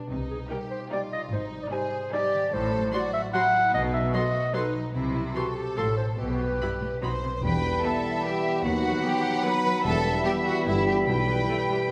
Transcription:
Already playing: B2 G3 B3 D4 G4
0.10 C2 C3 D#4
0.30 G3 G#4
0.50 G3 D#4 G4 A#4 G5
0.71 G4 C5
0.91 G3 D#4 F4 D5 G5
1.12 C4 D#5
1.32 G#1 G#2 D#4 C5
1.52 G3
1.63 D5
1.72 G3 C4 D#4 G#4 C5 G#5
1.92 C5
2.11 G3 D#4 G4 D5 G#5
2.33 D#3
2.53 A1 A2 A4 C5
2.73 F#3
2.93 F#3 C4 F#4 D5 C6
3.13 C5 E5
3.33 F#3 E4 F#4 F#5 C6
3.54 A3
3.73 B1 B2 D#4 D#5
3.93 A3 E5
4.14 F#3 C4 F#4 A4 D#5 C6
4.34 C5
4.54 F#3 A3 D#4 A4 B4 C6
4.74 F#3
4.95 C2 C3 E4
5.14 C4 E4
5.34 E3 F#4 G4 A4 C5 C6
5.55 G4
5.76 A1 A2 F3 A4 C6
5.97 C4 C5
6.18 B1 B2 G4 B4
6.40 G3
6.61 G2 G3 E4 B5
6.81 A2 B4
7.02 B1 B2 F#3 D#4 C5 B5 C6
7.23 C3 D#4 B4
7.36 C5
7.44 E1 E2 E3 G3 B3 E4 B4 G5 B5
7.65 G3
7.83 G3 B3 G4 A4 E5 A5
8.05 G3
8.24 G3 B3 G4 G5
8.46 G3
8.64 D#2 D#3 F#3 D#4 F#4 F#5
8.86 F#3
9.05 F#3 B3 F#4 G4 G5
9.26 F#3
9.45 F#3 B3 B4 B5
9.66 F#3
9.84 E1 E2 E3 G3 B3 E4 A4 E5 A5 B5
10.06 G3
10.25 G3 B3 G4 G5
10.45 G3 F#4 F#5
10.66 G1 G2 G3 B3 E4 E5
10.87 E4 G4 B4 G5
11.07 B1 B2 E4 B4 G5 B5
11.30 B3
11.50 A3 B4
11.71 G3 B3

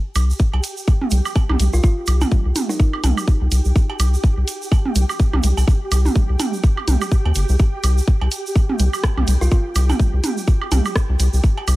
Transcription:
Already playing: G4
0.15 C2, closed hi-hat, high woodblock, shaker
0.30 shaker
0.39 kick, shaker
0.53 C2, cowbell, claves
0.64 closed hi-hat, shaker
0.77 shaker
0.87 kick, shaker
1.01 mid tom
1.11 C2, closed hi-hat, shaker
1.25 high woodblock, shaker
1.35 kick, cowbell, claves, shaker
1.49 C2, mid tom, high woodblock
1.60 C2, closed hi-hat, shaker
1.73 C2 F4, shaker
1.83 F4, kick, shaker
2.07 C2, closed hi-hat, high woodblock, shaker
2.21 mid tom, cowbell, claves, shaker
2.31 kick, shaker
2.45 C2
2.56 closed hi-hat, mid tom, shaker
2.69 D#4, shaker
2.80 kick
2.93 high woodblock
3.04 C2, closed hi-hat, mid tom, cowbell, claves, shaker
3.17 high woodblock, shaker
3.28 kick, shaker
3.41 C2
3.51 C2, closed hi-hat, shaker
3.65 C2, shaker
3.76 kick, shaker
3.90 cowbell, claves
4.00 C2, closed hi-hat, high woodblock, shaker
4.14 shaker
4.24 kick, shaker
4.37 C2
4.48 closed hi-hat, shaker
4.62 shaker
4.72 kick, cowbell, claves, shaker
4.85 mid tom
4.95 C2, closed hi-hat, shaker
5.09 high woodblock, shaker
5.19 kick, shaker
5.33 C2, mid tom, high woodblock
5.43 C2, closed hi-hat, shaker
5.57 C2, cowbell, claves, shaker
5.68 kick, shaker
5.92 C2, closed hi-hat, high woodblock, shaker
6.05 mid tom, shaker
6.15 kick, shaker
6.29 C2
6.40 closed hi-hat, mid tom, cowbell, claves, shaker
6.54 shaker
6.63 kick, shaker
6.77 high woodblock
6.88 C2, closed hi-hat, mid tom, shaker
7.01 high woodblock, shaker
7.12 kick, shaker
7.25 D#2, cowbell, claves
7.35 G1, closed hi-hat, shaker
7.49 C2, shaker
7.59 kick, shaker
7.84 C2, closed hi-hat, high woodblock, shaker
7.98 shaker
8.08 kick
8.21 C2, cowbell, claves
8.31 closed hi-hat, shaker
8.46 shaker
8.56 kick, shaker
8.69 mid tom
8.79 C2, closed hi-hat, shaker
8.93 high woodblock, shaker
9.04 kick, cross-stick, cowbell, claves, shaker
9.17 C2, mid tom, high woodblock
9.27 C2, closed hi-hat, shaker
9.41 C2 F4, shaker
9.51 F4, kick, shaker
9.75 C2, closed hi-hat, high woodblock, shaker
9.90 mid tom, cowbell, claves, shaker
10.00 kick, shaker
10.13 C2
10.24 closed hi-hat, mid tom, shaker
10.38 shaker
10.47 kick, shaker
10.62 high woodblock
10.72 C2, closed hi-hat, mid tom, cowbell, claves, shaker
10.85 high woodblock, shaker
10.96 kick, cross-stick, shaker
11.09 C2
11.20 C2, closed hi-hat, shaker
11.33 C2, shaker
11.43 kick, shaker
11.57 cowbell, claves
11.68 C2, closed hi-hat, high woodblock, shaker

